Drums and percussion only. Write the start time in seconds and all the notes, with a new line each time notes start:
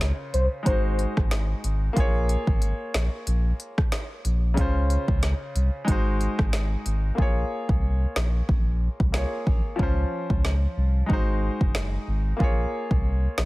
0.01 snare, closed hi-hat
0.34 closed hi-hat
0.66 kick, closed hi-hat
0.99 closed hi-hat
1.17 kick, cross-stick
1.31 snare, closed hi-hat
1.64 closed hi-hat
1.97 kick, closed hi-hat
2.29 closed hi-hat
2.47 kick
2.62 closed hi-hat
2.94 snare, closed hi-hat
3.27 closed hi-hat
3.60 closed hi-hat
3.78 kick, cross-stick
3.92 snare, closed hi-hat
4.25 closed hi-hat
4.57 kick, closed hi-hat
4.90 closed hi-hat
5.08 kick
5.23 snare, closed hi-hat
5.56 closed hi-hat
5.88 kick, closed hi-hat
6.21 closed hi-hat
6.39 kick, cross-stick
6.53 snare, closed hi-hat
6.86 closed hi-hat
7.18 kick
7.69 kick
8.16 snare
8.49 kick
9.00 kick
9.14 snare
9.47 kick
9.79 kick
10.30 kick
10.45 snare
11.10 kick
11.61 kick
11.75 snare
12.40 kick
12.91 kick
13.38 snare